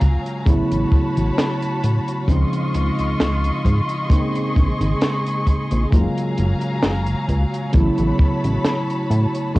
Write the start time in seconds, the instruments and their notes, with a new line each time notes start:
Already playing: tine electric piano C#3 F#3 G#3 A#3 F4, string section F#3 F5 G#5 A#5
0.01 analog synth bass C#2, kick, closed hi-hat
0.26 closed hi-hat
0.46 analog synth bass A1, tine electric piano C#3 F#3 A3 B3 E4, string section F#4 C#5 A5 B5, kick, closed hi-hat
0.71 analog synth bass A1, closed hi-hat
0.92 kick
1.17 analog synth bass A1, closed hi-hat
1.38 snare, closed hi-hat
1.62 closed hi-hat
1.84 analog synth bass A2, closed hi-hat
2.08 closed hi-hat
2.28 analog synth bass C#2, tine electric piano C#3 F3 G#3 C4 D#4, string section F4 D#5 C6 C#6, kick, closed hi-hat
2.53 closed hi-hat
2.74 analog synth bass C#2, closed hi-hat
2.99 analog synth bass C#2, closed hi-hat
3.20 analog synth bass C#2, snare, closed hi-hat
3.44 closed hi-hat
3.65 analog synth bass G#2, kick, closed hi-hat
3.89 closed hi-hat
4.09 tine electric piano C#3 G#3 A#3 C4 D#4, string section G#4, kick, closed hi-hat
4.35 closed hi-hat
4.56 analog synth bass A#1, kick, closed hi-hat
4.80 analog synth bass G#1, closed hi-hat
5.01 snare, closed hi-hat
5.26 closed hi-hat
5.47 kick, closed hi-hat
5.71 analog synth bass A#1, closed hi-hat
5.91 analog synth bass F#1, tine electric piano C#3 F#3 G#3 A#3 F4, string section F#3 F5 G#5 A#5, kick, closed hi-hat
6.17 closed hi-hat
6.37 analog synth bass F#1, closed hi-hat
6.61 closed hi-hat
6.82 analog synth bass F#1, snare, closed hi-hat
7.06 closed hi-hat
7.29 analog synth bass C#2, kick, closed hi-hat
7.54 closed hi-hat
7.72 analog synth bass A1, tine electric piano C#3 F#3 A3 B3 E4, string section C#5 A5 B5, kick, closed hi-hat
7.98 analog synth bass A1, closed hi-hat
8.19 kick
8.44 analog synth bass A1, closed hi-hat
8.65 snare, closed hi-hat
8.90 closed hi-hat
9.10 analog synth bass A2, closed hi-hat
9.35 closed hi-hat
9.54 analog synth bass C#2, tine electric piano C#3 F3 G#3, string section F4 D#5 C6 C#6, kick